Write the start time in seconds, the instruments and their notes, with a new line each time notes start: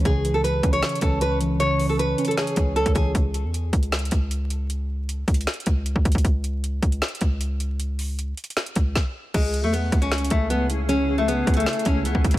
0.05 808-style bass C#2, synth keys C#3, nylon-string guitar G#4, kick, closed hi-hat
0.24 synth keys E3, closed hi-hat
0.34 nylon-string guitar A4
0.44 nylon-string guitar B4, closed hi-hat
0.63 808-style bass C#2, synth keys C#4, kick, closed hi-hat
0.73 nylon-string guitar C#5, closed hi-hat
0.83 synth keys C#5, snare, closed hi-hat
0.89 closed hi-hat
0.95 closed hi-hat
1.01 808-style bass C#2, synth keys C#4, nylon-string guitar A4, kick, closed hi-hat
1.21 nylon-string guitar B4, closed hi-hat
1.41 synth keys E3, closed hi-hat
1.60 synth keys C#3, nylon-string guitar C#5, closed hi-hat
1.80 synth keys E3, open hi-hat
1.89 nylon-string guitar A4
1.99 nylon-string guitar B4, closed hi-hat
2.18 synth keys C#4, closed hi-hat
2.25 nylon-string guitar A4, closed hi-hat
2.31 closed hi-hat
2.37 nylon-string guitar G#4, synth keys C#5, snare, closed hi-hat
2.47 closed hi-hat
2.56 808-style bass C#2, synth keys C#4, kick, closed hi-hat
2.76 nylon-string guitar A4, closed hi-hat
2.86 808-style bass C#2, kick, closed hi-hat
2.95 808-style bass C#2, synth keys E3, nylon-string guitar G#4, kick, closed hi-hat
3.15 808-style bass C#2, kick, closed hi-hat
3.34 closed hi-hat
3.44 808-style bass E2
3.54 closed hi-hat
3.73 808-style bass C#2, kick, closed hi-hat
3.83 closed hi-hat
3.92 snare, closed hi-hat
3.99 closed hi-hat
4.05 closed hi-hat
4.11 808-style bass C#2, kick, closed hi-hat
4.31 closed hi-hat
4.50 closed hi-hat
4.70 closed hi-hat
5.09 closed hi-hat
5.28 808-style bass C#2, kick, closed hi-hat
5.34 closed hi-hat
5.41 closed hi-hat
5.47 snare, closed hi-hat
5.54 closed hi-hat
5.60 closed hi-hat
5.66 808-style bass C#2, kick, closed hi-hat
5.86 closed hi-hat
5.96 808-style bass C#2, kick
6.05 808-style bass C#2, kick, closed hi-hat
6.12 808-style bass C#2, kick, closed hi-hat
6.18 closed hi-hat
6.25 808-style bass C#2, kick, closed hi-hat
6.44 closed hi-hat
6.64 closed hi-hat
6.83 808-style bass C#2, kick, closed hi-hat
6.92 closed hi-hat
7.02 snare, closed hi-hat
7.08 closed hi-hat
7.15 closed hi-hat
7.21 808-style bass C#2, kick, closed hi-hat
7.41 closed hi-hat
7.60 closed hi-hat
7.79 closed hi-hat
7.99 open hi-hat
8.19 closed hi-hat
8.37 closed hi-hat
8.44 closed hi-hat
8.50 closed hi-hat
8.57 snare, closed hi-hat
8.67 closed hi-hat
8.76 808-style bass C#2, kick, closed hi-hat
8.96 kick, snare
9.34 808-style bass C#2, ambient pad C#3 C#4 E4 G#4, nylon-string guitar G#3, kick, closed hi-hat, crash
9.54 closed hi-hat
9.63 808-style bass E2, nylon-string guitar A3
9.73 nylon-string guitar B3, closed hi-hat
9.92 808-style bass C#2, kick, closed hi-hat
10.02 nylon-string guitar C#4, closed hi-hat
10.12 snare, closed hi-hat
10.18 closed hi-hat
10.25 closed hi-hat
10.30 808-style bass C#2, nylon-string guitar A3, kick, closed hi-hat
10.50 nylon-string guitar B3, closed hi-hat
10.70 closed hi-hat
10.89 nylon-string guitar C#4, closed hi-hat
11.18 nylon-string guitar A3
11.28 nylon-string guitar B3, closed hi-hat
11.47 808-style bass C#2, kick, closed hi-hat
11.54 nylon-string guitar A3, closed hi-hat
11.60 closed hi-hat
11.66 snare, closed hi-hat
11.73 closed hi-hat
11.79 closed hi-hat
11.85 808-style bass C#2, nylon-string guitar C#4, kick, closed hi-hat
12.05 nylon-string guitar B3, closed hi-hat
12.15 808-style bass C#2, kick
12.25 808-style bass C#2, kick, closed hi-hat
12.31 808-style bass C#2, kick, closed hi-hat